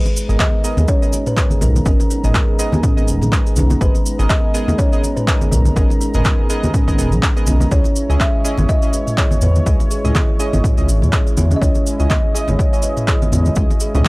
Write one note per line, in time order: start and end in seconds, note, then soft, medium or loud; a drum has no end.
0.00 7.67 G#3 medium
0.00 7.67 B3 medium
0.00 7.67 D#4 medium
0.00 0.41 B4 loud
0.00 7.67 A#5 medium
0.05 muted conga medium
0.05 cabasa soft
0.17 cabasa loud
0.29 0.36 G#1 loud
0.29 0.62 B3 medium
0.29 0.62 G#4 medium
0.29 0.62 A#4 medium
0.29 0.62 D#5 loud
0.29 cabasa soft
0.39 0.85 D#5 loud
0.39 kick loud
0.39 clap loud
0.39 muted conga soft
0.39 high conga medium
0.39 cabasa soft
0.64 0.99 B3 loud
0.64 0.99 G#4 medium
0.64 0.99 A#4 medium
0.64 0.99 D#5 loud
0.64 cabasa loud
0.77 0.85 D#2 medium
0.77 0.88 G#4 medium
0.77 muted conga medium
0.77 high conga loud
0.77 cabasa soft
0.88 1.01 C#4 medium
0.88 1.28 C#5 loud
0.88 kick loud
0.88 cabasa medium
1.02 1.13 B3 medium
1.02 1.13 G#4 medium
1.02 1.13 A#4 medium
1.02 1.13 D#5 loud
1.02 cabasa soft
1.13 1.25 F#4 medium
1.13 muted conga soft
1.13 cabasa medium
1.27 1.59 B4 loud
1.27 mid tom loud
1.27 cabasa soft
1.37 1.58 B3 medium
1.37 1.58 G#4 medium
1.37 1.58 A#4 medium
1.37 1.58 D#5 medium
1.37 kick loud
1.37 clap loud
1.37 cabasa medium
1.50 1.60 G#4 medium
1.50 high conga medium
1.50 cabasa soft
1.61 1.79 B1 loud
1.61 1.85 A#4 medium
1.61 mid tom medium
1.61 muted conga medium
1.61 high conga loud
1.61 cabasa medium
1.76 high conga medium
1.76 cabasa soft
1.86 1.95 G#1 loud
1.86 2.00 B3 medium
1.86 1.98 C#4 medium
1.86 2.00 G#4 medium
1.86 2.00 A#4 medium
1.86 3.53 A#4 medium
1.86 2.00 D#5 medium
1.86 kick loud
1.86 cabasa medium
2.00 muted conga medium
2.00 cabasa soft
2.10 2.23 D#4 loud
2.10 cabasa medium
2.24 2.31 G#1 loud
2.24 2.57 B3 medium
2.24 2.57 G#4 medium
2.24 2.57 A#4 medium
2.24 2.57 D#5 loud
2.24 mid tom medium
2.24 cabasa soft
2.34 2.42 D#4 loud
2.34 kick loud
2.34 clap loud
2.34 muted conga soft
2.34 high conga loud
2.34 cabasa medium
2.48 2.58 G#4 medium
2.59 2.94 B3 loud
2.59 2.94 G#4 medium
2.59 2.94 A#4 medium
2.59 2.94 D#5 loud
2.59 cabasa loud
2.72 2.80 D#2 medium
2.72 muted conga medium
2.72 high conga loud
2.72 cabasa soft
2.83 2.96 C#4 medium
2.83 kick loud
2.83 mid tom medium
2.83 cabasa medium
2.97 3.09 G#1 loud
2.97 3.08 B3 medium
2.97 3.08 G#4 medium
2.97 3.08 A#4 medium
2.97 3.08 D#5 loud
2.97 cabasa soft
3.08 3.23 D#1 medium
3.08 muted conga soft
3.08 cabasa loud
3.21 3.29 B1 medium
3.21 3.32 G#4 medium
3.21 mid tom loud
3.21 high conga medium
3.21 cabasa soft
3.32 3.53 B3 medium
3.32 3.45 D#4 loud
3.32 3.53 G#4 medium
3.32 3.53 A#4 medium
3.32 3.53 D#5 medium
3.32 kick loud
3.32 clap loud
3.32 cabasa medium
3.46 3.56 G#4 medium
3.46 cabasa soft
3.56 3.74 B1 medium
3.56 3.64 C#4 medium
3.56 muted conga soft
3.56 high conga loud
3.56 cabasa loud
3.70 3.80 G#3 medium
3.70 high conga loud
3.70 cabasa soft
3.81 3.91 G#1 loud
3.81 3.94 G#3 loud
3.81 3.95 B3 medium
3.81 3.95 G#4 medium
3.81 3.95 A#4 medium
3.81 4.31 B4 loud
3.81 3.95 D#5 medium
3.81 kick loud
3.81 cabasa medium
3.95 muted conga soft
3.95 cabasa soft
4.06 cabasa medium
4.19 4.27 G#1 loud
4.19 4.52 B3 loud
4.19 4.52 G#4 medium
4.19 4.52 A#4 medium
4.19 4.52 D#5 loud
4.19 cabasa soft
4.30 4.80 D#5 loud
4.30 kick loud
4.30 clap loud
4.30 muted conga soft
4.30 high conga medium
4.30 cabasa medium
4.54 4.89 B3 loud
4.54 4.89 G#4 medium
4.54 4.89 A#4 medium
4.54 4.89 D#5 loud
4.54 cabasa medium
4.68 4.75 D#2 medium
4.68 4.78 G#4 medium
4.68 muted conga medium
4.68 high conga loud
4.68 cabasa soft
4.78 4.91 C#4 medium
4.78 5.14 C#5 loud
4.78 kick loud
4.78 cabasa medium
4.93 5.03 B3 medium
4.93 5.03 G#4 medium
4.93 5.03 A#4 medium
4.93 5.03 D#5 loud
4.93 cabasa soft
5.03 5.16 F#4 medium
5.03 muted conga soft
5.03 cabasa medium
5.16 5.53 B4 loud
5.16 mid tom medium
5.16 cabasa soft
5.27 5.48 B3 medium
5.27 5.48 G#4 medium
5.27 5.48 A#4 medium
5.27 5.48 D#5 medium
5.27 kick loud
5.27 clap loud
5.27 cabasa medium
5.41 5.51 G#4 medium
5.41 high conga medium
5.41 cabasa soft
5.51 5.70 B1 loud
5.51 5.74 A#4 medium
5.51 mid tom medium
5.51 muted conga medium
5.51 high conga loud
5.51 cabasa loud
5.65 high conga loud
5.65 cabasa soft
5.76 5.86 G#1 loud
5.76 5.90 B3 medium
5.76 5.89 C#4 medium
5.76 5.90 G#4 medium
5.76 7.43 A#4 medium
5.76 5.90 A#4 medium
5.76 5.90 D#5 medium
5.76 kick loud
5.76 cabasa medium
5.90 muted conga medium
5.90 cabasa soft
6.01 6.13 D#4 loud
6.01 cabasa medium
6.14 6.22 G#1 loud
6.14 6.47 B3 medium
6.14 6.47 G#4 medium
6.14 6.47 A#4 medium
6.14 6.47 D#5 loud
6.14 mid tom medium
6.14 low conga medium
6.14 cabasa soft
6.25 kick loud
6.25 clap loud
6.25 muted conga soft
6.25 high conga medium
6.25 cabasa medium
6.39 6.48 G#4 medium
6.50 6.84 B3 loud
6.50 6.84 G#4 medium
6.50 6.84 A#4 medium
6.50 6.84 D#5 loud
6.50 cabasa loud
6.63 6.71 D#2 loud
6.63 muted conga soft
6.63 high conga loud
6.63 cabasa soft
6.74 6.86 C#4 medium
6.74 kick loud
6.74 mid tom medium
6.74 cabasa medium
6.88 7.00 G#1 loud
6.88 6.96 B3 medium
6.88 6.96 G#4 medium
6.88 6.96 A#4 medium
6.88 6.96 D#5 loud
6.88 kick medium
6.88 cabasa soft
6.98 7.13 D#1 medium
6.98 7.12 B3 medium
6.98 7.12 G#4 medium
6.98 7.12 A#4 medium
6.98 7.12 D#5 loud
6.98 muted conga soft
6.98 cabasa medium
7.12 7.19 B1 medium
7.12 7.22 G#4 medium
7.12 mid tom medium
7.12 high conga medium
7.12 cabasa soft
7.23 7.35 D#4 loud
7.23 kick loud
7.23 clap loud
7.23 cabasa medium
7.36 7.69 B3 medium
7.36 7.46 G#4 medium
7.36 7.69 G#4 medium
7.36 7.69 A#4 medium
7.36 7.69 D#5 loud
7.36 cabasa soft
7.47 7.65 B1 medium
7.47 7.55 C#4 medium
7.47 muted conga medium
7.47 high conga loud
7.47 cabasa medium
7.60 7.70 G#3 medium
7.60 high conga loud
7.60 cabasa soft
7.71 7.81 C#2 loud
7.71 14.08 G#3 medium
7.71 7.85 C#4 medium
7.71 7.84 C#4 loud
7.71 14.08 C#4 medium
7.71 7.85 E4 medium
7.71 14.08 E4 medium
7.71 7.85 G#4 medium
7.71 11.58 C#5 medium
7.71 8.17 C#5 loud
7.71 7.85 D#5 medium
7.71 kick loud
7.71 cabasa medium
7.84 muted conga medium
7.84 cabasa soft
7.96 cabasa medium
8.10 8.17 C#2 medium
8.10 8.42 C#4 medium
8.10 8.42 E4 medium
8.10 8.42 G#4 medium
8.10 8.42 D#5 loud
8.10 cabasa soft
8.20 8.71 E5 loud
8.20 kick loud
8.20 clap loud
8.20 muted conga soft
8.20 high conga medium
8.20 cabasa soft
8.44 8.79 C#4 loud
8.44 8.79 E4 medium
8.44 8.79 G#4 medium
8.44 8.79 D#5 loud
8.44 cabasa loud
8.58 8.66 G#1 medium
8.58 8.69 C#5 medium
8.58 muted conga medium
8.58 high conga loud
8.58 cabasa soft
8.69 8.81 F#4 medium
8.69 9.14 D#5 loud
8.69 kick loud
8.69 cabasa medium
8.82 8.93 C#4 medium
8.82 8.93 E4 medium
8.82 8.93 G#4 medium
8.82 8.93 D#5 medium
8.82 cabasa soft
8.93 9.06 B4 medium
8.93 muted conga soft
8.93 cabasa medium
9.07 mid tom medium
9.07 cabasa soft
9.18 9.38 C#4 medium
9.18 9.38 E4 medium
9.18 9.38 G#4 medium
9.18 9.30 G#4 medium
9.18 9.43 C#5 medium
9.18 9.38 D#5 medium
9.18 kick loud
9.18 clap loud
9.18 cabasa medium
9.31 9.41 C#5 medium
9.31 high conga medium
9.31 cabasa soft
9.41 9.60 E2 loud
9.41 10.36 B4 medium
9.41 mid tom medium
9.41 muted conga soft
9.41 high conga loud
9.41 cabasa medium
9.55 high conga medium
9.55 cabasa soft
9.66 9.76 C#2 loud
9.66 9.80 C#4 medium
9.66 9.80 E4 medium
9.66 9.79 F#4 medium
9.66 9.80 G#4 medium
9.66 9.80 D#5 medium
9.66 kick loud
9.66 cabasa medium
9.80 muted conga medium
9.80 cabasa soft
9.91 10.03 G#4 loud
9.91 cabasa medium
10.04 10.12 C#2 medium
10.04 10.37 C#4 medium
10.04 10.37 E4 medium
10.04 10.37 G#4 medium
10.04 10.37 D#5 loud
10.04 mid tom medium
10.04 cabasa soft
10.15 10.23 G#4 loud
10.15 kick loud
10.15 clap loud
10.15 muted conga soft
10.15 high conga medium
10.15 cabasa medium
10.29 10.39 C#5 medium
10.39 10.74 C#4 loud
10.39 10.74 E4 medium
10.39 10.75 G#4 medium
10.39 10.75 D#5 loud
10.39 cabasa medium
10.53 10.61 G#1 medium
10.53 muted conga medium
10.53 high conga loud
10.53 cabasa soft
10.64 10.76 F#4 medium
10.64 kick loud
10.64 mid tom medium
10.64 cabasa medium
10.78 10.90 C#2 loud
10.78 10.89 C#4 medium
10.78 10.89 E4 medium
10.78 10.89 G#4 medium
10.78 10.89 D#5 loud
10.78 cabasa soft
10.88 11.04 G#1 medium
10.88 muted conga soft
10.88 cabasa loud
11.02 11.10 E2 medium
11.02 11.12 C#5 medium
11.02 mid tom medium
11.02 high conga medium
11.02 cabasa soft
11.12 11.33 C#4 medium
11.12 11.33 E4 medium
11.12 11.25 G#4 loud
11.12 11.33 G#4 medium
11.12 11.33 D#5 medium
11.12 kick loud
11.12 clap loud
11.12 cabasa medium
11.26 11.36 C#5 medium
11.26 cabasa soft
11.37 11.55 E2 medium
11.37 11.45 F#4 medium
11.37 muted conga medium
11.37 high conga loud
11.37 cabasa medium
11.51 11.60 C#4 medium
11.51 high conga loud
11.51 cabasa soft
11.56 11.62 D#5 medium
11.61 11.71 C#2 loud
11.61 11.74 C#4 loud
11.61 11.76 C#4 medium
11.61 11.76 E4 medium
11.61 11.76 G#4 medium
11.61 12.12 C#5 loud
11.61 11.76 D#5 medium
11.61 14.08 D#5 medium
11.61 kick loud
11.61 cabasa medium
11.75 muted conga medium
11.75 cabasa soft
11.86 cabasa medium
12.00 12.07 C#2 loud
12.00 12.32 C#4 medium
12.00 12.32 E4 medium
12.00 12.32 G#4 medium
12.00 12.32 D#5 loud
12.00 cabasa soft
12.10 12.50 D#5 loud
12.10 kick loud
12.10 clap loud
12.10 muted conga soft
12.10 high conga medium
12.10 cabasa soft
12.34 12.70 C#4 loud
12.34 12.70 E4 medium
12.34 12.70 G#4 medium
12.34 12.70 D#5 loud
12.34 cabasa medium
12.48 12.56 G#1 medium
12.48 14.08 C#5 loud
12.48 12.59 C#5 medium
12.48 muted conga medium
12.48 high conga medium
12.48 cabasa soft
12.59 12.72 F#4 medium
12.59 kick loud
12.59 cabasa medium
12.73 12.84 C#4 medium
12.73 12.84 E4 medium
12.73 12.84 G#4 medium
12.73 12.84 D#5 loud
12.73 cabasa soft
12.82 12.96 B4 medium
12.82 muted conga soft
12.82 cabasa medium
12.97 mid tom medium
12.97 cabasa soft
13.08 13.28 C#4 medium
13.08 13.28 E4 medium
13.08 13.28 G#4 medium
13.08 13.20 G#4 medium
13.08 13.28 D#5 medium
13.08 kick loud
13.08 clap loud
13.08 cabasa soft
13.22 13.31 C#5 medium
13.22 high conga medium
13.22 cabasa soft
13.32 13.50 E2 loud
13.32 mid tom medium
13.32 muted conga soft
13.32 high conga loud
13.32 cabasa medium
13.45 high conga medium
13.45 cabasa soft
13.55 13.66 C#2 loud
13.55 13.71 C#4 medium
13.55 13.71 E4 medium
13.55 13.69 F#4 medium
13.55 13.71 G#4 medium
13.55 13.71 D#5 medium
13.55 kick loud
13.55 cabasa medium
13.70 muted conga medium
13.70 cabasa soft
13.80 13.94 G#4 loud
13.80 cabasa loud
13.95 14.02 C#2 loud
13.95 14.08 C#4 medium
13.95 14.08 E4 medium
13.95 14.08 G#4 medium
13.95 14.08 D#5 loud
13.95 mid tom medium
13.95 low conga medium
13.95 cabasa soft